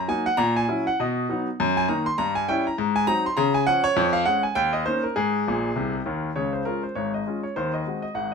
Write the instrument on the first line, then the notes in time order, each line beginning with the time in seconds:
grand piano
0.08 F#3 A#3 D#4 G#5
0.26 F#5
0.37 A#2 A#5
0.56 G#5
0.68 F#3 C#4 E4
0.87 F#5
1.00 B2 D#5
1.29 F#3 B3 D#4
1.60 F#2
1.77 G#5
1.88 D#3 A#3 D#4 A#5
2.06 C6
2.18 G2 A#5
2.35 G#5
2.48 G3 C#4 E4 G5
2.67 A#5
2.78 G#2
2.96 G#5
3.07 F#3 C4 D#4 A#5
3.26 C6
3.37 C#3 A#5
3.54 G#5
3.67 F3 C#4 F#5
3.84 C#5
3.96 F2
4.13 F5
4.25 G#3 C#4 F#5
4.43 G#5
4.55 D#2 G5
4.73 D#5
4.86 A#3 C#4 D#4 C5
5.03 A#4
5.16 G#2 G#4
5.47 A#1 A#2
5.76 C2 C3
6.06 D#2 D#3
6.36 C#2 C#3 C#5
6.53 C5
6.65 G#3 C#4 F4 A#4
6.83 C5
6.95 G#1 G#2 C#5
7.14 D#5
7.27 G#3 C#4 F4
7.43 C#5
7.56 D#2 D#3 C5
7.73 D#5
7.86 G#3 C4 F#4
8.02 D#5
8.15 G#1 G#2 F#5